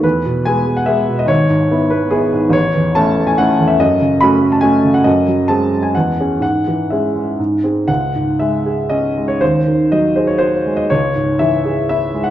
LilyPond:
<<
  \new Staff \with { instrumentName = "Grand piano" } { \time 3/4 \key e \major \tempo 4 = 134 b'4 gis''8. fis''16 e''8. dis''16 | cis''4. b'8 gis'4 | \key cis \minor cis''4 a''8. gis''16 fis''8. e''16 | dis''4 b''8. a''16 gis''8. fis''16 |
dis''4 a''8. gis''16 fis''4 | fis''4 e''4 r4 | fis''4 e''4 dis''8. cis''16 | bis'4 dis''8 bis'16 cis''16 bis'8. dis''16 |
cis''4 e''4 e''8. fis''16 | }
  \new Staff \with { instrumentName = "Grand piano" } { \clef bass \time 3/4 \key e \major e,8 b,8 <gis b gis'>8 gis8 <gis b gis'>8 b,8 | gis,,8 gis,8 <b e'>8 b8 <b e'>8 gis,8 | \key cis \minor a,,8 e,8 <a cis' e'>8 a8 <a cis' e'>8 e,8 | fis,8 cis8 <a cis' fis'>8 a8 <a cis' fis'>8 cis8 |
fis,8 fis8 <gis bis gis'>8 gis8 e,8 <cis' gis'>8 | gis,8 e8 <gis cis' gis'>8 gis8 gis,8 <bis gis'>8 | cis,8 gis,8 gis8 gis'8 cis'8 gis8 | dis,8 dis8 fis8 gis'8 fis'8 gis8 |
cis,8 gis,8 e8 gis'8 e'8 gis8 | }
>>